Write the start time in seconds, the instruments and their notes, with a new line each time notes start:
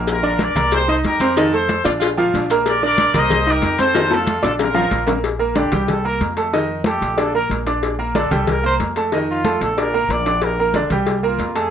Already playing: upright bass A#1, upright piano A#3 A#4 A#5
0.07 trumpet section F4 A#4, cowbell, high conga, maracas
0.23 upright piano D4 D5 D6, high conga, maracas
0.39 trumpet section A#4 D5, cowbell, high conga, maracas
0.56 upright bass C2, upright piano A#3 A#4 A#5, cowbell, high conga, low conga, maracas
0.72 trumpet section G4 C5, cowbell, high conga, maracas
0.88 upright piano D#4 D#5 D#6, trumpet section A4 C5, high conga, maracas
1.04 upright bass F2, trumpet section G4 A#4, cowbell, high conga, maracas
1.20 upright piano C4 C5 C6, cowbell, high conga, maracas
1.37 upright piano D#3 D#4 D#5, trumpet section F4 A4, cowbell, high conga, maracas
1.53 upright piano A3 A4 A5, trumpet section A4 C5, high conga, maracas
1.69 cowbell, high conga, maracas
1.85 upright bass A#1, upright piano D4 D5 D6, saxophone section F4, cowbell, high conga, maracas
2.01 saxophone section F4, cowbell, high conga, maracas
2.17 upright piano F3 F4 F5, saxophone section A#3, high conga, maracas
2.34 upright bass A#1, saxophone section D4, cowbell, high conga, maracas
2.50 upright piano A#3 A#4 A#5, cowbell, high conga, maracas
2.66 trumpet section A#4 D5, cowbell, high conga, maracas
2.82 upright piano D4 D5 D6, trumpet section A#4 D5, high conga, maracas
2.98 cowbell, high conga, maracas
3.14 upright bass C2, upright piano A#3 A#4 A#5, trumpet section C5 D#5, cowbell, high conga, low conga, maracas
3.30 cowbell, high conga, low conga, maracas
3.47 upright piano D#4 D#5 D#6, trumpet section G4 A#4, high conga, maracas
3.62 upright bass F2, cowbell, high conga, maracas
3.78 upright piano C4 C5 C6, trumpet section A4 C5, cowbell, high conga, maracas
3.94 upright piano D#3 D#4 D#5, cowbell, high bongo, high conga, maracas
4.10 upright piano A3 A4 A5, trumpet section F4 A4, high bongo, high conga, maracas
4.27 cowbell, high conga, maracas
4.43 upright bass A#1, upright piano D4 D5 D6, trumpet section F4 A4, cowbell, high bongo, high conga, maracas
4.59 trumpet section F4 A#4, cowbell, low bongo, high conga, maracas
4.74 upright piano F3 F4 F5, low bongo, high conga, maracas
4.91 upright bass A#1, cowbell, high conga, maracas
5.07 upright piano A#3 A#4 A#5, cowbell, low bongo, high conga, maracas
5.24 cowbell, high conga
5.39 upright piano A#3 A#4 A#5, high conga
5.55 upright piano D3 D4 D5, trumpet G4, cowbell, high conga
5.72 upright bass C2, upright piano G3 G4 G5, cowbell, high conga, low conga
5.88 trumpet A4, cowbell, high conga, low conga
6.04 upright piano A#3 A#4 A#5, trumpet A#4, high conga
6.21 upright bass F2, cowbell, high conga
6.37 upright piano A3 A4 A5, cowbell
6.53 upright piano D#3 D#4 D#5, cowbell, high conga
6.69 high conga
6.84 upright piano A3 A4 A5, trumpet G4, cowbell, high conga
7.01 upright bass A#1, cowbell, high conga
7.18 upright piano D4 D5 D6, trumpet A4, cowbell, high conga
7.33 upright piano A#3 A#4 A#5, trumpet A#4, high conga
7.50 upright bass A#1, cowbell, high conga
7.66 upright piano D4 D5 D6, cowbell, high conga
7.83 cowbell, high conga
7.99 upright piano A#3 A#4 A#5, high conga
8.15 upright piano D3 D4 D5, trumpet A4, cowbell, high conga
8.31 upright bass C2, upright piano G3 G4 G5, cowbell, high conga, low conga
8.47 trumpet A#4, cowbell, high conga, low conga
8.64 upright piano A#3 A#4 A#5, trumpet C5, high conga
8.80 upright bass F2, cowbell, high conga
8.96 upright piano A3 A4 A5, cowbell
9.12 upright piano D#3 D#4 D#5, cowbell, high conga
9.29 trumpet F4, high conga
9.45 upright piano A3 A4 A5, cowbell, high conga
9.61 upright bass A#1, trumpet A4, cowbell, high conga
9.78 upright piano D4 D5 D6, trumpet A#4, cowbell, high conga
9.93 upright piano A#3 A#4 A#5, high conga
10.09 upright bass A#1, trumpet D5, cowbell, high conga
10.25 upright piano D4 D5 D6, cowbell, high conga
10.42 trumpet A#4, cowbell, high conga
10.58 upright piano A#3 A#4 A#5, high conga
10.74 upright piano D3 D4 D5, cowbell, high conga
10.90 upright bass C2, upright piano G3 G4 G5, cowbell, high conga, low conga
11.07 cowbell, high conga
11.23 upright piano A#3 A#4 A#5, trumpet F4, high conga
11.39 upright bass F2, cowbell, high conga
11.55 upright piano A3 A4 A5, trumpet G#4, cowbell